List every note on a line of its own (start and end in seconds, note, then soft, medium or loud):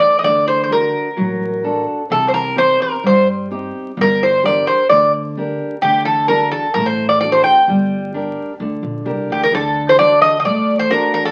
0.00 0.13 D#4 soft
0.00 0.14 A4 soft
0.00 0.14 C5 soft
0.00 0.18 D5 medium
0.19 0.24 D#5 medium
0.23 0.89 D2 medium
0.23 0.69 D3 medium
0.23 0.45 D5 loud
0.48 0.62 C5 medium
0.63 0.70 C5 medium
0.69 1.07 D4 soft
0.69 1.08 F#4 soft
0.69 1.84 A#4 medium
1.17 1.83 A1 medium
1.17 1.62 F#3 medium
1.64 2.01 D4 soft
1.64 2.01 F#4 soft
1.64 2.01 A4 medium
2.10 2.76 C2 medium
2.10 2.55 C3 medium
2.10 2.28 A4 medium
2.28 2.33 C5 medium
2.34 2.55 A#4 medium
2.56 2.94 C4 soft
2.56 2.94 D#4 soft
2.56 2.94 G4 soft
2.56 2.79 C5 loud
2.82 3.05 A#4 medium
3.03 3.69 G2 medium
3.03 3.49 G3 soft
3.03 3.27 C5 medium
3.51 3.88 C4 soft
3.51 3.88 D#4 soft
3.51 3.88 G4 soft
3.97 4.62 G1 medium
3.97 4.42 G3 medium
4.01 4.23 A#4 medium
4.23 4.45 C5 medium
4.43 4.81 D4 soft
4.43 4.80 G4 soft
4.43 4.81 A#4 medium
4.43 4.66 D5 medium
4.67 4.89 C5 medium
4.89 5.55 D2 medium
4.89 5.35 D3 medium
4.89 5.11 D5 medium
5.37 5.74 D4 soft
5.37 5.74 G4 soft
5.37 5.75 A#4 soft
5.82 6.47 D2 medium
5.82 6.28 D3 medium
5.82 6.05 G4 medium
6.05 6.28 A4 medium
6.28 6.66 D4 soft
6.28 6.66 F#4 soft
6.28 6.66 A4 soft
6.28 6.50 A#4 medium
6.51 6.73 A4 medium
6.74 7.40 A1 medium
6.74 7.21 A3 medium
6.74 6.85 A#4 medium
6.86 7.08 C5 medium
7.09 7.19 D5 medium
7.21 7.59 D4 soft
7.21 7.60 F#4 soft
7.21 7.59 A4 soft
7.21 7.32 D5 medium
7.32 7.43 C5 medium
7.44 9.25 G5 medium
7.68 8.32 G1 medium
7.68 8.13 G3 medium
8.14 8.51 D4 soft
8.14 8.51 G4 soft
8.14 8.51 A#4 soft
8.60 8.76 D2 medium
8.60 9.05 D3 medium
8.83 9.04 A#1 medium
9.05 9.27 C2 medium
9.05 9.42 D4 soft
9.05 9.43 G4 soft
9.05 9.43 A#4 medium
9.30 9.50 D2 medium
9.30 9.41 G4 medium
9.43 9.53 A#4 medium
9.52 10.45 D2 medium
9.52 9.97 D3 medium
9.52 9.89 A4 medium
9.89 9.98 C5 medium
9.98 10.35 D4 soft
9.98 10.35 F#4 soft
9.98 10.35 A4 medium
9.98 10.20 D5 loud
10.21 10.38 D#5 medium
10.40 10.45 D#5 medium
10.45 10.61 A1 loud
10.45 10.89 A3 medium
10.45 10.77 D5 medium
10.79 10.91 C5 medium
10.90 11.27 D4 soft
10.90 11.27 F#4 soft
10.90 11.27 A4 soft
10.90 11.12 A#4 medium
11.14 11.24 A#4 medium
11.25 11.31 A4 medium